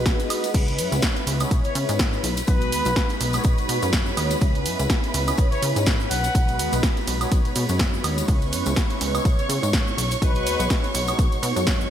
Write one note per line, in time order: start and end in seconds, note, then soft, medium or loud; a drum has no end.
0.00 0.13 B1 medium
0.00 0.16 G#3 medium
0.00 0.16 B3 medium
0.00 0.16 D#4 medium
0.00 0.16 F#4 medium
0.00 0.16 B4 loud
0.00 0.53 B4 medium
0.00 0.53 B5 medium
0.06 kick loud
0.06 snare loud
0.06 closed hi-hat medium
0.06 ride medium
0.06 tambourine medium
0.06 shaker soft
0.20 0.52 G#3 medium
0.20 0.52 B3 medium
0.20 0.52 D#4 medium
0.20 0.52 F#4 medium
0.20 0.52 B4 loud
0.20 closed hi-hat soft
0.20 tambourine soft
0.20 shaker soft
0.30 open hi-hat loud
0.30 ride medium
0.30 high woodblock medium
0.30 shaker medium
0.44 closed hi-hat medium
0.44 tambourine medium
0.44 shaker soft
0.54 0.80 C#2 loud
0.54 1.37 G#3 medium
0.54 1.37 B3 medium
0.54 1.37 C#4 medium
0.54 1.38 E4 medium
0.54 8.30 B4 medium
0.54 1.38 B4 medium
0.54 8.30 B5 medium
0.54 kick loud
0.54 closed hi-hat medium
0.54 crash medium
0.54 ride medium
0.54 tambourine medium
0.54 shaker soft
0.68 closed hi-hat soft
0.68 tambourine soft
0.78 0.88 F#2 loud
0.78 open hi-hat loud
0.78 ride medium
0.78 shaker medium
0.92 1.00 C#2 medium
0.92 closed hi-hat medium
0.92 tambourine medium
0.92 shaker soft
1.02 kick loud
1.02 snare loud
1.02 closed hi-hat medium
1.02 ride medium
1.02 tambourine medium
1.02 shaker soft
1.16 closed hi-hat soft
1.16 tambourine soft
1.27 1.45 C#2 loud
1.27 open hi-hat loud
1.27 ride medium
1.27 shaker medium
1.40 2.22 G#3 medium
1.40 2.22 B3 medium
1.40 2.22 C#4 medium
1.40 2.23 E4 medium
1.40 2.23 C#5 medium
1.40 closed hi-hat medium
1.40 tambourine medium
1.40 high woodblock medium
1.40 shaker soft
1.51 1.61 B1 medium
1.51 kick loud
1.51 closed hi-hat medium
1.51 ride medium
1.51 tambourine medium
1.51 shaker soft
1.64 1.73 C#3 soft
1.64 1.75 C#5 medium
1.64 closed hi-hat soft
1.64 tambourine soft
1.75 1.85 C#3 loud
1.75 open hi-hat loud
1.75 ride medium
1.75 shaker medium
1.89 2.19 G#2 medium
1.89 closed hi-hat medium
1.89 tambourine medium
1.89 shaker soft
1.99 kick loud
1.99 snare loud
1.99 closed hi-hat medium
1.99 ride medium
1.99 tambourine medium
1.99 shaker soft
2.13 tambourine soft
2.13 shaker soft
2.24 2.42 B1 medium
2.24 open hi-hat loud
2.24 ride medium
2.24 shaker medium
2.37 closed hi-hat medium
2.37 tambourine medium
2.37 shaker soft
2.47 2.73 B1 loud
2.47 3.30 G#3 medium
2.47 3.31 B3 medium
2.47 3.31 D#4 medium
2.47 3.31 F#4 medium
2.47 3.16 B4 loud
2.47 3.31 B4 medium
2.47 kick loud
2.47 closed hi-hat medium
2.47 ride medium
2.47 tambourine medium
2.47 shaker soft
2.61 closed hi-hat soft
2.61 tambourine soft
2.72 2.82 D#2 medium
2.72 open hi-hat loud
2.72 ride medium
2.72 shaker medium
2.85 2.93 B1 loud
2.85 closed hi-hat medium
2.85 tambourine medium
2.85 shaker soft
2.96 kick loud
2.96 snare loud
2.96 closed hi-hat medium
2.96 ride medium
2.96 shaker soft
3.09 closed hi-hat soft
3.09 tambourine soft
3.21 3.39 B1 loud
3.21 open hi-hat loud
3.21 ride medium
3.21 shaker medium
3.33 4.39 G#3 medium
3.33 4.39 B3 medium
3.33 4.39 D#4 medium
3.33 4.39 F#4 medium
3.33 4.39 C#5 medium
3.33 closed hi-hat medium
3.33 tambourine medium
3.33 high woodblock medium
3.33 shaker soft
3.44 3.54 B1 medium
3.44 kick loud
3.44 closed hi-hat medium
3.44 ride medium
3.44 tambourine medium
3.44 shaker soft
3.58 3.67 B2 soft
3.58 closed hi-hat soft
3.58 tambourine soft
3.69 3.79 B2 loud
3.69 open hi-hat loud
3.69 ride medium
3.69 shaker medium
3.82 4.13 F#2 medium
3.82 closed hi-hat medium
3.82 tambourine medium
3.82 shaker soft
3.93 kick loud
3.93 snare loud
3.93 closed hi-hat medium
3.93 ride medium
3.93 tambourine medium
3.93 shaker soft
4.06 tambourine soft
4.06 shaker soft
4.17 4.36 D#2 medium
4.17 open hi-hat loud
4.17 ride medium
4.17 high woodblock medium
4.17 shaker medium
4.31 closed hi-hat medium
4.31 tambourine medium
4.31 shaker soft
4.41 4.67 C#2 loud
4.41 5.24 G#3 medium
4.41 5.24 B3 medium
4.41 5.24 C#4 medium
4.41 5.25 E4 medium
4.41 5.25 B4 medium
4.41 kick loud
4.41 closed hi-hat medium
4.41 ride medium
4.41 tambourine medium
4.41 shaker soft
4.55 closed hi-hat soft
4.55 tambourine soft
4.66 4.75 F#2 medium
4.66 open hi-hat loud
4.66 ride medium
4.66 shaker medium
4.79 4.87 C#2 medium
4.79 closed hi-hat medium
4.79 tambourine medium
4.79 shaker soft
4.90 kick loud
4.90 snare loud
4.90 closed hi-hat medium
4.90 ride medium
4.90 tambourine medium
4.90 shaker soft
5.04 closed hi-hat soft
5.04 tambourine soft
5.14 5.32 C#2 loud
5.14 open hi-hat loud
5.14 ride medium
5.14 shaker medium
5.27 6.09 G#3 medium
5.27 6.09 B3 medium
5.27 6.09 C#4 medium
5.27 6.10 E4 medium
5.27 6.10 C#5 medium
5.27 closed hi-hat soft
5.27 tambourine medium
5.27 high woodblock medium
5.27 shaker soft
5.37 5.48 B1 medium
5.37 kick loud
5.37 closed hi-hat medium
5.37 ride medium
5.37 tambourine medium
5.37 shaker soft
5.52 5.60 C#3 soft
5.52 5.62 C#5 medium
5.52 closed hi-hat soft
5.52 tambourine soft
5.62 5.72 C#3 loud
5.62 open hi-hat loud
5.62 ride medium
5.62 shaker medium
5.76 6.06 G#2 medium
5.76 closed hi-hat medium
5.76 tambourine medium
5.76 shaker soft
5.86 kick loud
5.86 snare loud
5.86 closed hi-hat medium
5.86 ride medium
5.86 tambourine medium
5.86 shaker soft
6.00 tambourine soft
6.00 shaker soft
6.11 6.29 B1 medium
6.11 6.79 F#5 loud
6.11 open hi-hat loud
6.11 ride medium
6.11 shaker medium
6.24 closed hi-hat medium
6.24 tambourine medium
6.24 shaker soft
6.34 6.60 B1 loud
6.34 7.17 G#3 medium
6.34 7.18 B3 medium
6.34 7.18 D#4 medium
6.34 7.18 F#4 medium
6.34 7.18 B4 medium
6.34 kick loud
6.34 closed hi-hat medium
6.34 ride medium
6.34 tambourine medium
6.34 shaker soft
6.48 closed hi-hat soft
6.48 tambourine soft
6.59 6.69 D#2 loud
6.59 open hi-hat loud
6.59 ride medium
6.59 shaker medium
6.73 6.80 B1 medium
6.73 closed hi-hat soft
6.73 tambourine medium
6.73 shaker soft
6.83 kick loud
6.83 snare loud
6.83 closed hi-hat medium
6.83 ride medium
6.83 shaker soft
6.97 closed hi-hat soft
6.97 tambourine soft
7.07 7.26 B1 loud
7.07 open hi-hat loud
7.07 ride medium
7.07 shaker medium
7.20 8.25 G#3 medium
7.20 8.26 B3 medium
7.20 8.26 D#4 medium
7.20 8.26 F#4 medium
7.20 8.26 C#5 medium
7.20 closed hi-hat medium
7.20 tambourine medium
7.20 high woodblock medium
7.20 shaker soft
7.32 7.42 B1 medium
7.32 kick loud
7.32 closed hi-hat medium
7.32 ride medium
7.32 tambourine medium
7.32 shaker soft
7.45 7.54 B2 soft
7.45 closed hi-hat soft
7.45 tambourine soft
7.56 7.66 B2 loud
7.56 open hi-hat loud
7.56 ride medium
7.56 shaker medium
7.69 8.00 F#2 loud
7.69 closed hi-hat medium
7.69 tambourine medium
7.69 shaker soft
7.79 kick loud
7.79 snare loud
7.79 closed hi-hat medium
7.79 ride medium
7.79 tambourine medium
7.79 shaker soft
7.94 tambourine soft
7.94 shaker soft
8.04 8.23 D#2 medium
8.04 open hi-hat loud
8.04 ride medium
8.04 high woodblock medium
8.04 shaker medium
8.18 closed hi-hat medium
8.18 tambourine medium
8.18 shaker soft
8.27 8.54 C#2 loud
8.27 9.11 G#3 medium
8.27 9.11 B3 medium
8.27 9.11 C#4 medium
8.27 9.12 E4 medium
8.27 9.12 B4 medium
8.27 11.90 C#5 medium
8.27 11.90 C#6 medium
8.27 kick loud
8.27 closed hi-hat medium
8.27 ride medium
8.27 tambourine medium
8.27 shaker soft
8.42 closed hi-hat soft
8.42 tambourine soft
8.53 8.62 F#2 loud
8.53 open hi-hat loud
8.53 ride medium
8.53 shaker medium
8.66 8.74 C#2 loud
8.66 closed hi-hat medium
8.66 tambourine medium
8.66 shaker soft
8.76 kick loud
8.76 snare loud
8.76 closed hi-hat medium
8.76 ride medium
8.76 shaker soft
8.90 closed hi-hat soft
8.90 tambourine soft
9.01 9.19 C#2 loud
9.01 open hi-hat loud
9.01 ride medium
9.01 shaker medium
9.14 9.96 G#3 medium
9.14 9.96 B3 medium
9.14 9.96 C#4 medium
9.14 9.97 E4 medium
9.14 9.97 C#5 medium
9.14 closed hi-hat medium
9.14 tambourine medium
9.14 high woodblock medium
9.14 shaker soft
9.25 9.35 B1 medium
9.25 kick loud
9.25 closed hi-hat medium
9.25 ride medium
9.25 tambourine medium
9.25 shaker soft
9.39 9.47 C#3 soft
9.39 9.49 C#5 medium
9.39 closed hi-hat soft
9.39 tambourine soft
9.49 9.59 C#3 loud
9.49 open hi-hat loud
9.49 ride medium
9.49 shaker medium
9.63 9.93 G#2 medium
9.63 closed hi-hat medium
9.63 tambourine medium
9.63 shaker soft
9.73 kick loud
9.73 snare loud
9.73 closed hi-hat medium
9.73 ride medium
9.73 tambourine medium
9.73 shaker soft
9.87 tambourine soft
9.87 shaker soft
9.97 10.16 B1 medium
9.97 open hi-hat loud
9.97 ride medium
9.97 shaker medium
10.11 closed hi-hat medium
10.11 tambourine medium
10.11 shaker soft
10.21 10.47 B1 loud
10.21 11.04 G#3 medium
10.21 11.05 B3 medium
10.21 11.05 D#4 medium
10.21 11.05 F#4 medium
10.21 10.90 B4 loud
10.21 11.05 B4 medium
10.21 kick loud
10.21 closed hi-hat medium
10.21 ride medium
10.21 tambourine medium
10.21 shaker soft
10.35 closed hi-hat soft
10.35 tambourine soft
10.46 10.56 D#2 medium
10.46 open hi-hat loud
10.46 ride medium
10.46 shaker medium
10.59 10.67 B1 loud
10.59 closed hi-hat medium
10.59 tambourine medium
10.59 shaker soft
10.70 kick loud
10.70 snare loud
10.70 closed hi-hat medium
10.70 ride medium
10.70 tambourine medium
10.70 shaker soft
10.84 closed hi-hat soft
10.84 tambourine soft
10.94 11.13 B1 loud
10.94 open hi-hat loud
10.94 ride medium
10.94 shaker medium
11.07 11.90 G#3 medium
11.07 11.90 B3 medium
11.07 11.90 D#4 medium
11.07 11.90 F#4 medium
11.07 11.90 C#5 medium
11.07 closed hi-hat medium
11.07 tambourine medium
11.07 high woodblock medium
11.07 shaker soft
11.19 11.29 B1 medium
11.19 kick loud
11.19 closed hi-hat medium
11.19 ride medium
11.19 tambourine medium
11.19 shaker soft
11.32 11.41 B2 soft
11.32 closed hi-hat soft
11.32 tambourine soft
11.43 11.53 B2 loud
11.43 open hi-hat loud
11.43 ride medium
11.43 shaker medium
11.56 11.87 F#2 medium
11.56 closed hi-hat medium
11.56 tambourine medium
11.56 shaker soft
11.67 kick loud
11.67 snare loud
11.67 closed hi-hat medium
11.67 ride medium
11.67 tambourine medium
11.67 shaker soft
11.81 tambourine soft
11.81 shaker soft